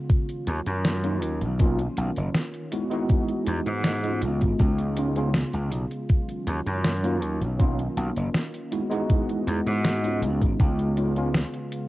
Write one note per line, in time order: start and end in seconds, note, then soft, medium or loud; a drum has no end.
0.00 2.68 F4 medium
0.10 1.58 D#3 medium
0.10 1.59 F#3 medium
0.10 2.70 C#4 medium
0.10 kick loud
0.10 closed hi-hat medium
0.29 closed hi-hat soft
0.47 0.59 D#2 loud
0.47 closed hi-hat medium
0.66 1.22 F#2 loud
0.66 closed hi-hat soft
0.85 snare loud
0.85 closed hi-hat medium
1.03 1.16 F#3 medium
1.03 1.16 A#3 medium
1.03 1.16 C#4 medium
1.03 1.16 D#4 medium
1.03 1.16 F4 medium
1.03 closed hi-hat soft
1.22 1.43 D#2 medium
1.22 closed hi-hat loud
1.41 1.86 B1 loud
1.41 closed hi-hat soft
1.59 2.71 D#3 medium
1.59 1.80 F#3 medium
1.59 1.80 A#3 medium
1.59 2.71 A#3 medium
1.59 1.80 C#4 medium
1.59 1.80 D#4 medium
1.59 1.80 F4 loud
1.59 kick loud
1.59 closed hi-hat medium
1.79 closed hi-hat soft
1.97 2.10 B1 medium
1.97 closed hi-hat medium
2.16 2.28 F#1 medium
2.16 closed hi-hat soft
2.34 snare loud
2.34 closed hi-hat medium
2.54 closed hi-hat soft
2.71 4.21 E3 medium
2.71 2.88 G#3 medium
2.71 6.06 G#3 medium
2.71 2.88 B3 medium
2.71 2.89 D#4 medium
2.71 2.89 E4 medium
2.71 4.21 F#4 medium
2.71 2.89 F#4 medium
2.71 4.21 D#5 medium
2.71 closed hi-hat medium
2.90 3.99 G#3 loud
2.90 3.99 B3 medium
2.90 3.99 D#4 medium
2.90 4.00 E4 medium
2.90 4.00 F#4 loud
2.90 closed hi-hat soft
3.09 kick loud
3.09 closed hi-hat medium
3.29 closed hi-hat soft
3.47 3.59 E2 loud
3.47 closed hi-hat medium
3.66 4.24 G#2 medium
3.66 closed hi-hat soft
3.84 snare loud
3.84 closed hi-hat medium
4.03 4.92 G#3 medium
4.03 4.93 B3 medium
4.03 4.93 C#4 medium
4.03 4.93 D#4 medium
4.03 4.94 F4 medium
4.03 closed hi-hat soft
4.21 4.43 C#2 medium
4.21 6.08 C#3 medium
4.21 6.08 B3 medium
4.21 7.56 F4 loud
4.21 closed hi-hat medium
4.41 4.53 G#1 medium
4.41 kick medium
4.41 closed hi-hat soft
4.59 5.43 C#2 medium
4.59 kick loud
4.59 closed hi-hat medium
4.78 closed hi-hat soft
4.97 5.12 G#3 medium
4.97 5.12 B3 medium
4.97 5.12 C#4 medium
4.97 5.12 D#4 medium
4.97 5.13 F4 medium
4.97 closed hi-hat medium
5.16 5.28 G#3 medium
5.16 5.28 B3 medium
5.16 5.29 C#4 medium
5.16 5.29 D#4 medium
5.16 5.29 F4 medium
5.16 closed hi-hat soft
5.34 snare loud
5.34 closed hi-hat medium
5.53 5.72 C#2 medium
5.53 closed hi-hat soft
5.72 5.84 B1 medium
5.72 closed hi-hat medium
5.91 closed hi-hat soft
6.09 7.58 D#3 medium
6.09 7.58 F#3 medium
6.09 8.69 C#4 medium
6.09 kick loud
6.09 closed hi-hat medium
6.29 closed hi-hat soft
6.47 6.59 D#2 loud
6.47 closed hi-hat medium
6.67 7.22 F#2 medium
6.67 closed hi-hat soft
6.84 snare loud
6.84 closed hi-hat medium
7.03 7.16 F#3 medium
7.03 7.16 A#3 medium
7.03 7.16 C#4 medium
7.03 7.16 D#4 medium
7.03 7.17 F4 medium
7.03 closed hi-hat soft
7.22 7.43 D#2 medium
7.22 closed hi-hat medium
7.41 7.86 B1 medium
7.41 closed hi-hat soft
7.59 8.71 D#3 medium
7.59 7.80 F#3 medium
7.59 7.80 A#3 medium
7.59 8.71 A#3 medium
7.59 7.80 C#4 medium
7.59 7.80 D#4 medium
7.59 8.71 F4 medium
7.59 7.80 F4 loud
7.59 kick loud
7.59 closed hi-hat medium
7.79 closed hi-hat soft
7.97 8.09 B1 medium
7.97 closed hi-hat medium
8.16 8.28 F#1 medium
8.16 closed hi-hat soft
8.34 snare loud
8.34 closed hi-hat medium
8.54 closed hi-hat soft
8.72 10.21 E3 medium
8.72 8.88 G#3 medium
8.72 11.88 G#3 medium
8.72 8.88 B3 medium
8.72 8.89 D#4 medium
8.72 8.89 E4 medium
8.72 10.21 F#4 medium
8.72 8.89 F#4 medium
8.72 10.21 D#5 medium
8.72 closed hi-hat medium
8.90 9.99 G#3 loud
8.90 9.99 B3 medium
8.90 9.99 D#4 medium
8.90 10.00 E4 medium
8.90 10.00 F#4 loud
8.90 closed hi-hat soft
9.10 kick loud
9.10 closed hi-hat medium
9.29 closed hi-hat soft
9.47 9.59 E2 loud
9.47 closed hi-hat medium
9.66 10.23 G#2 medium
9.66 closed hi-hat soft
9.85 snare loud
9.85 closed hi-hat medium
10.02 10.92 G#3 medium
10.02 10.92 B3 medium
10.02 10.93 C#4 medium
10.02 10.93 D#4 medium
10.02 10.93 F4 medium
10.02 closed hi-hat soft
10.22 10.43 C#2 medium
10.22 11.88 C#3 medium
10.22 11.88 B3 medium
10.22 11.88 F4 medium
10.22 closed hi-hat medium
10.41 10.53 G#1 medium
10.41 kick medium
10.41 closed hi-hat soft
10.60 11.43 C#2 medium
10.60 kick loud
10.60 closed hi-hat medium
10.79 closed hi-hat soft
10.97 11.12 G#3 medium
10.97 11.12 B3 medium
10.97 11.12 C#4 medium
10.97 11.12 D#4 medium
10.97 11.12 F4 medium
10.97 closed hi-hat medium
11.16 11.28 G#3 medium
11.16 11.28 B3 medium
11.16 11.29 C#4 medium
11.16 11.29 D#4 medium
11.16 11.29 F4 loud
11.16 closed hi-hat soft
11.34 snare loud
11.34 closed hi-hat medium
11.54 closed hi-hat soft
11.72 closed hi-hat medium